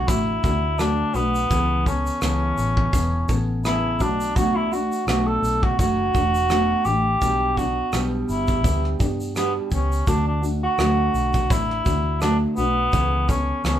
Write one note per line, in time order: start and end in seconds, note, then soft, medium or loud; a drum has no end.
0.07 0.37 A1 medium
0.07 0.43 F#3 medium
0.07 0.44 A3 medium
0.07 0.44 D4 medium
0.07 0.80 E4 medium
0.07 0.43 F#4 medium
0.07 kick loud
0.07 shaker medium
0.44 1.02 D2 medium
0.44 0.79 A3 soft
0.44 0.79 D4 soft
0.44 0.79 F#4 soft
0.44 kick medium
0.44 shaker soft
0.79 1.15 D3 medium
0.79 1.15 F#3 medium
0.79 1.15 A3 medium
0.79 1.17 D4 medium
0.79 1.15 D4 medium
0.79 1.14 F#4 medium
0.79 cross-stick medium
0.79 shaker medium
1.14 1.44 B1 medium
1.14 1.51 A3 soft
1.14 1.88 B3 medium
1.14 1.51 D4 soft
1.14 1.51 F#4 soft
1.14 shaker soft
1.35 shaker soft
1.50 2.09 C#2 medium
1.50 1.86 C#3 medium
1.50 1.87 E3 medium
1.50 1.87 B3 medium
1.50 1.86 C#4 medium
1.50 1.85 A4 medium
1.50 kick medium
1.50 shaker medium
1.86 2.22 B3 soft
1.86 2.21 C#4 medium
1.86 2.22 C#4 soft
1.86 2.22 A4 soft
1.86 kick medium
1.86 shaker soft
2.06 shaker soft
2.22 2.51 C#2 medium
2.22 2.93 C#3 medium
2.22 2.91 E3 medium
2.22 2.93 B3 medium
2.22 3.35 C#4 medium
2.22 2.93 C#4 medium
2.22 2.94 A4 medium
2.22 cross-stick medium
2.22 shaker medium
2.57 2.87 A1 medium
2.57 shaker soft
2.77 kick medium
2.93 3.22 E1 medium
2.93 3.29 E3 medium
2.93 3.29 B3 medium
2.93 3.28 C#4 medium
2.93 3.27 A4 medium
2.93 kick loud
2.93 shaker medium
3.28 4.01 A1 medium
3.28 3.64 B3 soft
3.28 3.65 C#4 medium
3.28 3.64 A4 medium
3.28 kick medium
3.28 shaker soft
3.65 4.01 C#3 medium
3.65 4.01 E3 medium
3.65 4.01 B3 medium
3.65 4.01 C#4 medium
3.65 4.03 E4 medium
3.65 4.00 A4 medium
3.65 cross-stick medium
3.65 shaker medium
4.00 4.88 B1 medium
4.00 4.36 A3 soft
4.00 4.38 D4 medium
4.00 4.37 D4 soft
4.00 4.36 F#4 soft
4.00 kick medium
4.00 shaker soft
4.21 shaker medium
4.36 4.72 B2 medium
4.36 4.72 F#3 medium
4.36 4.73 A3 medium
4.36 4.72 D4 medium
4.36 4.57 F#4 loud
4.36 4.70 F#4 medium
4.36 kick medium
4.36 shaker medium
4.56 4.74 E4 medium
4.72 5.07 A3 soft
4.72 5.07 D4 soft
4.72 5.07 F#4 soft
4.72 5.07 F#4 medium
4.72 shaker soft
4.92 shaker soft
5.07 5.36 B1 medium
5.07 5.79 B2 medium
5.07 5.78 F#3 medium
5.07 5.79 A3 medium
5.07 5.80 D4 medium
5.07 5.28 F#4 medium
5.07 5.80 F#4 medium
5.07 cross-stick loud
5.07 shaker medium
5.27 5.65 A4 loud
5.42 5.72 B1 medium
5.42 shaker soft
5.63 5.79 F#4 medium
5.63 kick medium
5.79 6.08 F#1 medium
5.79 6.15 F#3 medium
5.79 6.15 A3 medium
5.79 6.15 D4 medium
5.79 6.87 F#4 loud
5.79 6.14 F#4 medium
5.79 kick medium
5.79 shaker medium
6.14 6.73 E1 medium
6.14 6.50 A3 soft
6.14 6.50 D4 soft
6.14 6.51 F#4 soft
6.14 kick medium
6.14 shaker medium
6.35 shaker soft
6.50 6.86 B2 medium
6.50 6.86 F#3 medium
6.50 6.86 A3 medium
6.50 6.85 D4 medium
6.50 6.87 F#4 medium
6.50 cross-stick medium
6.50 shaker medium
6.85 7.15 A1 medium
6.85 7.22 A3 soft
6.85 7.21 D4 soft
6.85 7.59 G4 loud
6.85 shaker soft
7.21 7.80 B1 medium
7.21 7.57 B2 medium
7.21 7.58 G3 medium
7.21 7.58 B3 medium
7.21 7.57 D4 medium
7.21 7.58 G4 medium
7.21 kick medium
7.21 shaker medium
7.57 7.92 B3 soft
7.57 7.93 D4 soft
7.57 8.03 F#4 medium
7.57 kick medium
7.57 shaker soft
7.92 8.22 B1 medium
7.92 8.64 B2 medium
7.92 8.63 G3 medium
7.92 8.63 B3 medium
7.92 8.65 D4 medium
7.92 8.64 G4 medium
7.92 cross-stick loud
7.92 shaker medium
8.29 8.64 G1 medium
8.29 8.97 E4 medium
8.29 shaker soft
8.48 kick medium
8.48 shaker soft
8.64 8.94 D2 medium
8.64 9.00 G3 medium
8.64 9.00 B3 medium
8.64 9.00 D4 medium
8.64 8.98 G4 medium
8.64 kick medium
8.64 shaker medium
8.84 cross-stick soft
8.99 9.59 G2 medium
8.99 9.35 B3 soft
8.99 9.35 D4 soft
8.99 9.36 G4 soft
8.99 kick medium
8.99 shaker soft
9.20 shaker soft
9.35 9.71 B2 medium
9.35 9.71 G3 medium
9.35 9.72 B3 medium
9.35 9.53 B3 medium
9.35 9.72 D4 medium
9.35 9.70 G4 medium
9.35 cross-stick medium
9.35 shaker medium
9.71 10.01 C#2 medium
9.71 10.07 B3 soft
9.71 10.06 C#4 medium
9.71 10.07 G4 soft
9.71 kick medium
9.71 shaker soft
9.92 shaker soft
10.07 10.66 D2 medium
10.07 10.43 D3 medium
10.07 10.43 F#3 medium
10.07 10.43 A3 medium
10.07 10.26 D4 medium
10.07 10.42 D4 medium
10.07 10.41 F#4 medium
10.07 kick medium
10.07 shaker medium
10.28 10.44 D4 medium
10.42 10.78 A3 soft
10.42 10.78 D4 soft
10.42 10.78 F#4 soft
10.42 shaker soft
10.63 11.52 F#4 medium
10.78 11.08 D2 medium
10.78 11.50 D3 medium
10.78 11.49 F#3 medium
10.78 11.50 A3 medium
10.78 11.50 D4 medium
10.78 11.51 F#4 medium
10.78 cross-stick loud
10.78 shaker medium
11.14 11.51 B1 medium
11.14 shaker soft
11.34 kick medium
11.34 shaker soft
11.50 11.80 A1 medium
11.50 11.86 F#3 soft
11.50 11.86 A3 medium
11.50 11.86 D4 medium
11.50 12.21 E4 medium
11.50 11.84 F#4 medium
11.50 kick loud
11.50 shaker medium
11.70 cross-stick soft
11.85 12.45 D2 medium
11.85 12.21 A3 soft
11.85 12.21 D4 soft
11.85 12.21 F#4 soft
11.85 kick medium
11.85 shaker soft
12.21 12.57 D3 medium
12.21 12.57 F#3 medium
12.21 12.58 A3 medium
12.21 12.38 D4 medium
12.21 12.57 D4 medium
12.21 12.56 F#4 medium
12.21 cross-stick medium
12.21 shaker medium
12.57 12.87 B1 medium
12.57 12.94 A3 soft
12.57 13.30 B3 medium
12.57 12.94 D4 soft
12.57 12.93 F#4 soft
12.57 shaker soft
12.93 13.52 C#2 medium
12.93 13.29 C#3 medium
12.93 13.29 E3 medium
12.93 13.29 B3 medium
12.93 13.29 C#4 medium
12.93 13.28 A4 medium
12.93 kick medium
12.93 shaker medium
13.29 13.65 B3 soft
13.29 13.64 C#4 medium
13.29 13.65 C#4 soft
13.29 13.65 A4 soft
13.29 kick medium
13.29 shaker medium
13.64 13.79 C#2 medium
13.64 13.79 C#3 medium
13.64 13.79 E3 medium
13.64 13.79 B3 medium
13.64 13.79 C#4 medium
13.64 13.79 A4 medium
13.64 cross-stick loud
13.64 shaker medium